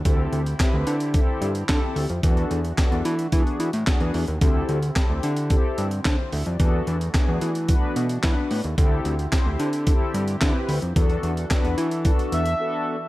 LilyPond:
<<
  \new Staff \with { instrumentName = "Analog synth lead" } { \time 4/4 \key e \phrygian \tempo 4 = 110 r1 | r1 | r1 | r1 |
r1 | r2 r8 e''4. | }
  \new Staff \with { instrumentName = "Analog polysynth" } { \time 4/4 \key e \phrygian << { r1 | r1 | r2. c''8 e''16 d''16~ | d''16 r2. r8. |
r1 | r1 | } \\ { <c' e' g' a'>8 r8 <c' e' g' b'>8 r8 <c' e' g' a'>8 r8 <c' e' g' a'>8 r8 | <b d' fis' a'>8 r8 <b d' fis' a'>8 r8 <b d' fis' gis'>8 r8 <b d' fis' gis'>8 r8 | <c' e' g' a'>8 r8 <c' e' g' a'>8 r8 <c' e' g' a'>8 r4. | <b d' fis' a'>8 r8 <b d' fis' gis'>8 r8 <b d' fis' b'>8 r8 <b d' fis' b'>8 r8 |
<c' e' g' a'>8 r8 <c' e' g' c''>8 r8 <c' e' g' a'>8 r8 <c' e' g' b'>8 r8 | <b d' fis' a'>8 r8 <b d' fis' b'>8 r8 <b d' fis' a'>8 r8 <b d' fis' a'>8 r8 | } >> }
  \new Staff \with { instrumentName = "Analog synth pad" } { \time 4/4 \key e \phrygian <d c' e' g'>1 | <e a d' fis'>1 | <d c' e' g'>1 | <e a d' fis'>1 |
<d c' e' g'>1 | <e d' fis' a'>1 | }
  \new Staff \with { instrumentName = "Analog synth bass" } { \clef bass \time 4/4 \key e \phrygian d,8 d,8 r16 d,16 d8. r16 g,8 d16 r16 d,16 f,16 | e,8 e,8 r16 e,16 e8 e16 r16 e16 a,16 r16 e,16 e,16 ees,16 | d,8 d,8 r16 d,16 d8. r16 g,8 d16 r16 d,16 f,16 | e,8 e,8 r16 e,16 e8. r16 b,8 e16 r16 a,16 ees,16 |
d,8 d,8 r16 d,16 d8. r16 g,8 d16 r16 d,16 f,16 | e,8 e,8 r16 e,16 e8. r16 e,8 r4 | }
  \new DrumStaff \with { instrumentName = "Drums" } \drummode { \time 4/4 <hh bd>8 hh16 hh16 <hc hh bd sn>8 hh16 hh16 <hh bd>8 hh16 hh16 <hc hh bd sn>8 hho16 hh16 | <hh bd>16 hh16 hh16 hh16 <hc hh bd sn>16 hh16 hh16 hh16 <hh bd>16 hh16 hh16 hh16 <hc hh bd sn>16 hh16 hho16 hh16 | <hh bd>8 hh16 hh16 <hc hh bd sn>8 hh16 hh16 <hh bd>8 hh16 hh16 <hc hh bd sn>8 hho16 hh16 | <hh bd>8 hh16 hh16 <hc hh bd sn>8 hh16 hh16 <hh bd>8 hh16 hh16 <hc hh bd sn>8 hho16 hh16 |
<hh bd>8 hh16 hh16 <hc hh bd sn>8 hh16 hh16 <hh bd>8 hh16 hh16 <hc hh bd sn>8 hho16 hh16 | <hh bd>16 hh16 hh16 hh16 <hc hh bd sn>16 hh16 hh16 hh16 <hh bd>16 hh16 hh16 hh16 r4 | }
>>